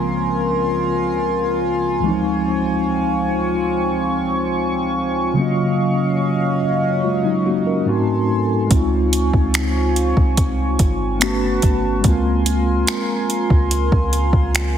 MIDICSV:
0, 0, Header, 1, 5, 480
1, 0, Start_track
1, 0, Key_signature, -5, "major"
1, 0, Tempo, 833333
1, 1176, Time_signature, 4, 2, 24, 8
1, 8513, End_track
2, 0, Start_track
2, 0, Title_t, "Analog synth pad"
2, 0, Program_c, 0, 89
2, 0, Note_on_c, 0, 49, 75
2, 0, Note_on_c, 0, 65, 70
2, 0, Note_on_c, 0, 70, 65
2, 0, Note_on_c, 0, 80, 70
2, 0, Note_on_c, 0, 84, 81
2, 1158, Note_off_c, 0, 49, 0
2, 1158, Note_off_c, 0, 70, 0
2, 1159, Note_off_c, 0, 84, 0
2, 1176, Note_on_c, 0, 60, 65
2, 1176, Note_on_c, 0, 85, 84
2, 3073, Note_off_c, 0, 80, 0
2, 3074, Note_off_c, 0, 65, 0
2, 3077, Note_off_c, 0, 60, 0
2, 3098, Note_on_c, 0, 54, 73
2, 3098, Note_on_c, 0, 77, 71
2, 3099, Note_on_c, 0, 61, 77
2, 3099, Note_on_c, 0, 75, 66
2, 4513, Note_off_c, 0, 85, 0
2, 4522, Note_off_c, 0, 77, 0
2, 4523, Note_off_c, 0, 61, 0
2, 4523, Note_off_c, 0, 75, 0
2, 4537, Note_on_c, 0, 69, 65
2, 4537, Note_on_c, 0, 80, 68
2, 4540, Note_on_c, 0, 84, 82
2, 4998, Note_off_c, 0, 54, 0
2, 5011, Note_off_c, 0, 69, 0
2, 5012, Note_off_c, 0, 80, 0
2, 5013, Note_off_c, 0, 84, 0
2, 5018, Note_on_c, 0, 65, 78
2, 5018, Note_on_c, 0, 80, 71
2, 5018, Note_on_c, 0, 85, 81
2, 5019, Note_on_c, 0, 60, 70
2, 6442, Note_off_c, 0, 80, 0
2, 6443, Note_off_c, 0, 60, 0
2, 6443, Note_off_c, 0, 65, 0
2, 6458, Note_on_c, 0, 66, 77
2, 6458, Note_on_c, 0, 81, 69
2, 6460, Note_on_c, 0, 71, 65
2, 6918, Note_off_c, 0, 85, 0
2, 6932, Note_off_c, 0, 66, 0
2, 6932, Note_off_c, 0, 81, 0
2, 6933, Note_off_c, 0, 71, 0
2, 6937, Note_on_c, 0, 65, 76
2, 6937, Note_on_c, 0, 80, 71
2, 6937, Note_on_c, 0, 84, 85
2, 6938, Note_on_c, 0, 70, 73
2, 8513, Note_off_c, 0, 65, 0
2, 8513, Note_off_c, 0, 70, 0
2, 8513, Note_off_c, 0, 80, 0
2, 8513, Note_off_c, 0, 84, 0
2, 8513, End_track
3, 0, Start_track
3, 0, Title_t, "Tine electric piano"
3, 0, Program_c, 1, 4
3, 0, Control_c, 1, 64, 127
3, 0, Note_on_c, 1, 37, 67
3, 0, Note_on_c, 1, 53, 68
3, 0, Note_on_c, 1, 56, 60
3, 0, Note_on_c, 1, 58, 65
3, 0, Note_on_c, 1, 60, 81
3, 1143, Note_off_c, 1, 37, 0
3, 1149, Note_off_c, 1, 53, 0
3, 1151, Note_on_c, 1, 37, 70
3, 1155, Note_off_c, 1, 56, 0
3, 1160, Note_off_c, 1, 58, 0
3, 1163, Note_on_c, 1, 52, 52
3, 1165, Note_off_c, 1, 60, 0
3, 1174, Note_on_c, 1, 56, 65
3, 1183, Control_c, 1, 64, 0
3, 1186, Note_on_c, 1, 60, 67
3, 1196, Note_on_c, 1, 63, 77
3, 1202, Note_on_c, 1, 53, 64
3, 1207, Note_off_c, 1, 52, 0
3, 1274, Control_c, 1, 64, 127
3, 3061, Note_off_c, 1, 37, 0
3, 3072, Note_off_c, 1, 56, 0
3, 3073, Note_on_c, 1, 49, 67
3, 3078, Note_off_c, 1, 60, 0
3, 3083, Note_off_c, 1, 63, 0
3, 3085, Note_on_c, 1, 54, 65
3, 3086, Note_off_c, 1, 53, 0
3, 3097, Note_on_c, 1, 58, 66
3, 3103, Control_c, 1, 64, 0
3, 3107, Note_on_c, 1, 61, 60
3, 3118, Note_on_c, 1, 65, 77
3, 3186, Control_c, 1, 64, 127
3, 3796, Note_off_c, 1, 54, 0
3, 3802, Note_off_c, 1, 58, 0
3, 3807, Note_off_c, 1, 61, 0
3, 3813, Note_off_c, 1, 65, 0
3, 4056, Note_on_c, 1, 65, 62
3, 4058, Note_on_c, 1, 56, 54
3, 4170, Note_off_c, 1, 65, 0
3, 4171, Note_off_c, 1, 56, 0
3, 4176, Note_on_c, 1, 63, 69
3, 4180, Note_on_c, 1, 54, 58
3, 4290, Note_off_c, 1, 63, 0
3, 4292, Note_off_c, 1, 54, 0
3, 4298, Note_on_c, 1, 66, 69
3, 4299, Note_on_c, 1, 58, 56
3, 4411, Note_off_c, 1, 66, 0
3, 4412, Note_off_c, 1, 58, 0
3, 4416, Note_on_c, 1, 70, 61
3, 4420, Note_on_c, 1, 61, 49
3, 4501, Note_off_c, 1, 49, 0
3, 4524, Note_on_c, 1, 44, 70
3, 4529, Note_on_c, 1, 57, 63
3, 4535, Note_on_c, 1, 60, 68
3, 4539, Note_on_c, 1, 63, 67
3, 4544, Control_c, 1, 64, 0
3, 4545, Note_on_c, 1, 66, 78
3, 4638, Control_c, 1, 64, 127
3, 4644, Note_off_c, 1, 70, 0
3, 4646, Note_off_c, 1, 61, 0
3, 4994, Note_on_c, 1, 56, 68
3, 5002, Note_off_c, 1, 60, 0
3, 5009, Note_on_c, 1, 60, 66
3, 5010, Note_off_c, 1, 44, 0
3, 5012, Note_off_c, 1, 57, 0
3, 5018, Note_off_c, 1, 63, 0
3, 5020, Note_off_c, 1, 66, 0
3, 5023, Control_c, 1, 64, 0
3, 5025, Note_on_c, 1, 63, 65
3, 5040, Note_on_c, 1, 65, 78
3, 5133, Control_c, 1, 64, 127
3, 6422, Note_off_c, 1, 56, 0
3, 6429, Note_off_c, 1, 60, 0
3, 6438, Note_off_c, 1, 63, 0
3, 6445, Note_off_c, 1, 65, 0
3, 6448, Note_on_c, 1, 57, 72
3, 6455, Note_on_c, 1, 59, 69
3, 6462, Control_c, 1, 64, 0
3, 6463, Note_on_c, 1, 61, 69
3, 6470, Note_on_c, 1, 66, 78
3, 6561, Control_c, 1, 64, 127
3, 6918, Note_on_c, 1, 56, 73
3, 6932, Note_off_c, 1, 57, 0
3, 6932, Note_on_c, 1, 58, 65
3, 6935, Note_off_c, 1, 59, 0
3, 6939, Note_off_c, 1, 61, 0
3, 6943, Note_off_c, 1, 66, 0
3, 6943, Control_c, 1, 64, 0
3, 6949, Note_on_c, 1, 60, 65
3, 6963, Note_on_c, 1, 65, 78
3, 7033, Control_c, 1, 64, 127
3, 8513, Note_off_c, 1, 56, 0
3, 8513, Note_off_c, 1, 58, 0
3, 8513, Note_off_c, 1, 60, 0
3, 8513, Note_off_c, 1, 65, 0
3, 8513, End_track
4, 0, Start_track
4, 0, Title_t, "808-style bass"
4, 0, Program_c, 2, 38
4, 5016, Note_on_c, 2, 37, 104
4, 5361, Note_off_c, 2, 37, 0
4, 5377, Note_on_c, 2, 37, 95
4, 5837, Note_off_c, 2, 37, 0
4, 5858, Note_on_c, 2, 36, 93
4, 6202, Note_off_c, 2, 36, 0
4, 6219, Note_on_c, 2, 31, 97
4, 6678, Note_off_c, 2, 31, 0
4, 6700, Note_on_c, 2, 31, 98
4, 6928, Note_off_c, 2, 31, 0
4, 6937, Note_on_c, 2, 37, 106
4, 7397, Note_off_c, 2, 37, 0
4, 7779, Note_on_c, 2, 37, 97
4, 8008, Note_off_c, 2, 37, 0
4, 8019, Note_on_c, 2, 37, 98
4, 8248, Note_off_c, 2, 37, 0
4, 8254, Note_on_c, 2, 37, 95
4, 8513, Note_off_c, 2, 37, 0
4, 8513, End_track
5, 0, Start_track
5, 0, Title_t, "Drums"
5, 5015, Note_on_c, 9, 42, 67
5, 5016, Note_on_c, 9, 36, 103
5, 5072, Note_off_c, 9, 42, 0
5, 5073, Note_off_c, 9, 36, 0
5, 5258, Note_on_c, 9, 42, 70
5, 5316, Note_off_c, 9, 42, 0
5, 5377, Note_on_c, 9, 36, 80
5, 5435, Note_off_c, 9, 36, 0
5, 5495, Note_on_c, 9, 42, 70
5, 5501, Note_on_c, 9, 26, 109
5, 5553, Note_off_c, 9, 42, 0
5, 5559, Note_off_c, 9, 26, 0
5, 5739, Note_on_c, 9, 42, 59
5, 5796, Note_off_c, 9, 42, 0
5, 5857, Note_on_c, 9, 36, 85
5, 5915, Note_off_c, 9, 36, 0
5, 5976, Note_on_c, 9, 36, 99
5, 5976, Note_on_c, 9, 42, 70
5, 6033, Note_off_c, 9, 42, 0
5, 6034, Note_off_c, 9, 36, 0
5, 6216, Note_on_c, 9, 42, 58
5, 6218, Note_on_c, 9, 36, 84
5, 6274, Note_off_c, 9, 42, 0
5, 6275, Note_off_c, 9, 36, 0
5, 6457, Note_on_c, 9, 42, 68
5, 6462, Note_on_c, 9, 26, 105
5, 6514, Note_off_c, 9, 42, 0
5, 6520, Note_off_c, 9, 26, 0
5, 6695, Note_on_c, 9, 42, 60
5, 6699, Note_on_c, 9, 36, 86
5, 6753, Note_off_c, 9, 42, 0
5, 6757, Note_off_c, 9, 36, 0
5, 6935, Note_on_c, 9, 42, 66
5, 6937, Note_on_c, 9, 36, 109
5, 6992, Note_off_c, 9, 42, 0
5, 6994, Note_off_c, 9, 36, 0
5, 7177, Note_on_c, 9, 42, 69
5, 7235, Note_off_c, 9, 42, 0
5, 7416, Note_on_c, 9, 42, 72
5, 7421, Note_on_c, 9, 26, 104
5, 7473, Note_off_c, 9, 42, 0
5, 7479, Note_off_c, 9, 26, 0
5, 7659, Note_on_c, 9, 42, 58
5, 7717, Note_off_c, 9, 42, 0
5, 7778, Note_on_c, 9, 36, 90
5, 7835, Note_off_c, 9, 36, 0
5, 7897, Note_on_c, 9, 42, 65
5, 7955, Note_off_c, 9, 42, 0
5, 8019, Note_on_c, 9, 36, 95
5, 8076, Note_off_c, 9, 36, 0
5, 8138, Note_on_c, 9, 42, 56
5, 8195, Note_off_c, 9, 42, 0
5, 8254, Note_on_c, 9, 36, 89
5, 8312, Note_off_c, 9, 36, 0
5, 8379, Note_on_c, 9, 42, 64
5, 8384, Note_on_c, 9, 26, 105
5, 8436, Note_off_c, 9, 42, 0
5, 8442, Note_off_c, 9, 26, 0
5, 8513, End_track
0, 0, End_of_file